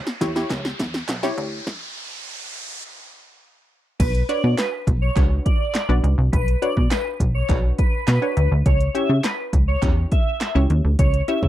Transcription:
Already playing: riser
0.07 snare
0.21 analog synth bass E2, synth pluck E4 G4 C#5, kick, snare, closed hi-hat
0.36 synth pluck E4 G4 C#5, snare
0.50 analog synth bass C#2, kick, snare, clap, closed hi-hat
0.65 snare
0.79 analog synth bass E2, kick, snare, closed hi-hat
0.94 snare
1.08 analog synth bass B1, snare, clap, closed hi-hat
1.23 synth pluck E4 G4 C#5, snare
1.38 analog synth bass D2, closed hi-hat
1.67 kick, snare
4.00 analog synth bass B1, digital synth lead B4, kick, closed hi-hat, crash
4.15 closed hi-hat
4.29 synth pluck D4 F#4 B4 C#5, digital synth lead D5, closed hi-hat
4.44 analog synth bass B2
4.58 digital synth lead B4, snare, clap, closed hi-hat
4.87 analog synth bass B1, kick, closed hi-hat
5.02 digital synth lead C#5
5.16 analog synth bass C#2, synth pluck D4 F#4 B4 C#5, kick, clap, closed hi-hat
5.45 digital synth lead D5, kick, closed hi-hat
5.74 snare, clap, closed hi-hat
5.89 analog synth bass B1, synth pluck D4 F#4 B4 D5
6.04 analog synth bass C#2, closed hi-hat
6.18 analog synth bass C2
6.32 analog synth bass B1, digital synth lead B4, kick, closed hi-hat
6.48 closed hi-hat
6.62 synth pluck D4 F#4 B4 C#5, digital synth lead D5, closed hi-hat
6.77 analog synth bass B2, kick
6.91 digital synth lead B4, snare, clap, closed hi-hat
7.20 analog synth bass B1, kick, closed hi-hat
7.35 digital synth lead C#5
7.49 analog synth bass B1, synth pluck D4 F#4 B4 C#5, kick, clap, closed hi-hat
7.78 digital synth lead B4, kick, closed hi-hat
8.07 analog synth bass B2, digital synth lead B4, snare, clap, closed hi-hat
8.22 synth pluck D4 F#4 B4 C#5
8.37 analog synth bass D2, closed hi-hat
8.52 analog synth bass D2
8.66 analog synth bass C#2, digital synth lead C#5, kick, closed hi-hat
8.80 closed hi-hat
8.95 synth pluck C#4 E4 G4 C#5, digital synth lead E5, closed hi-hat
9.09 analog synth bass C#3
9.24 digital synth lead B4, snare, clap, closed hi-hat
9.53 analog synth bass C#2, kick, closed hi-hat
9.68 digital synth lead C#5
9.82 analog synth bass E2, synth pluck C#4 E4 G4 C#5, kick, clap, closed hi-hat
10.11 digital synth lead E5, kick, closed hi-hat
10.41 snare, clap, closed hi-hat
10.55 analog synth bass C#2, synth pluck C#4 E4 G4 C#5
10.70 analog synth bass D#2, closed hi-hat
10.85 analog synth bass D2
10.99 analog synth bass C#2, digital synth lead C#5, kick, closed hi-hat
11.14 closed hi-hat
11.28 synth pluck C#4 E4 G4 C#5, digital synth lead E5, closed hi-hat
11.43 analog synth bass C#3, kick

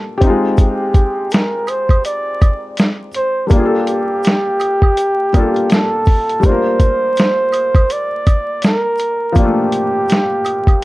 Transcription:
Already playing: felt piano G3 A#3 D4 F4 G4, flugelhorn A4
0.18 felt piano C4 G4, kick
0.22 felt piano D#4, closed hi-hat
0.27 felt piano G#3 F4
0.57 flugelhorn G4, kick, closed hi-hat, shaker
0.94 kick, closed hi-hat, shaker
1.31 flugelhorn A#4, snare, closed hi-hat, shaker
1.67 flugelhorn C5, closed hi-hat, high woodblock, shaker
1.89 kick, closed hi-hat, high woodblock
2.05 flugelhorn D5, closed hi-hat, shaker
2.41 kick, closed hi-hat, high woodblock, shaker
2.77 snare, closed hi-hat, shaker
3.12 flugelhorn C5, closed hi-hat, shaker
3.47 felt piano G3 A#3, flugelhorn A4, kick, shaker
3.51 felt piano D4, flugelhorn G4, closed hi-hat
3.56 felt piano F4 G#4
3.65 felt piano A4
3.87 closed hi-hat, shaker
4.23 closed hi-hat, shaker
4.27 snare
4.60 closed hi-hat, high woodblock, shaker
4.82 kick, high woodblock
4.97 closed hi-hat, shaker
5.33 felt piano G3 A#3 D4, kick, closed hi-hat, high woodblock, shaker
5.37 felt piano F4 A4
5.56 closed hi-hat
5.70 flugelhorn A4, snare, closed hi-hat, shaker
6.05 kick, open hi-hat, shaker
6.29 closed hi-hat
6.40 felt piano G3 A3, kick, shaker
6.44 felt piano D4, flugelhorn C5, closed hi-hat
6.49 felt piano A#3 F4 A#4
6.80 kick, closed hi-hat, shaker
7.16 snare, closed hi-hat, shaker
7.52 closed hi-hat, high woodblock, shaker
7.75 kick, closed hi-hat, high woodblock
7.90 flugelhorn D5, closed hi-hat, shaker
8.27 kick, closed hi-hat, high woodblock, shaker
8.62 flugelhorn A#4, snare, closed hi-hat, shaker
8.98 closed hi-hat, shaker
9.32 felt piano F3 A#3, kick, closed hi-hat, shaker
9.38 felt piano D4 F4, flugelhorn G4
9.45 felt piano A3
9.72 closed hi-hat, shaker
10.08 snare, closed hi-hat, shaker
10.45 closed hi-hat, high woodblock, shaker
10.67 kick, closed hi-hat, high woodblock

